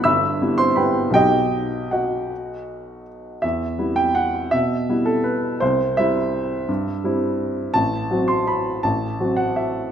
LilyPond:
<<
  \new Staff \with { instrumentName = "Upright piano" } { \time 3/4 \key e \minor \tempo 4 = 164 <e'' b'' e'''>4. <c'' c'''>8 <b' g'' b''>4 | <g' dis'' g''>2 <fis' dis'' fis''>4~ | <fis' dis'' fis''>2 r4 | e''4. g''8 fis''4 |
e''4. a'8 b'4 | c''4 e''2~ | e''2. | a''4. c'''8 b''4 |
a''4. fis''8 e''4 | }
  \new Staff \with { instrumentName = "Upright piano" } { \time 3/4 \key e \minor <g,, g,>4 <g b e'>4 <g b e'>4 | <b,, fis b dis'>2.~ | <b,, fis b dis'>2. | e,4 <g b e'>2 |
b,4 <g b e'>2 | c,4 <g c' e'>2 | g,4 <g c' e'>2 | a,,4 <fis c' fis'>2 |
a,,4 <fis c' fis'>2 | }
>>